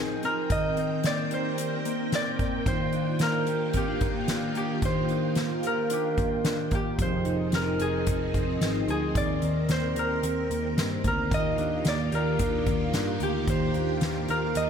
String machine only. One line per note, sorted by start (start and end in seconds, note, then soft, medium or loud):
0.00 0.48 F3 medium
0.00 0.48 C4 medium
0.00 0.48 D#4 medium
0.00 0.48 G#4 medium
0.00 11.28 G5 medium
0.50 6.95 D#3 medium
0.50 2.64 C4 medium
0.50 2.64 A#4 medium
2.65 6.94 A#3 medium
2.65 6.94 F4 medium
6.98 9.13 F3 medium
6.98 11.27 C4 medium
6.98 9.13 D#4 medium
6.98 9.13 G#4 medium
9.15 14.70 D#3 medium
9.15 11.29 A#4 medium
11.30 14.70 A#3 medium
11.30 14.70 F4 medium
11.30 14.70 G4 medium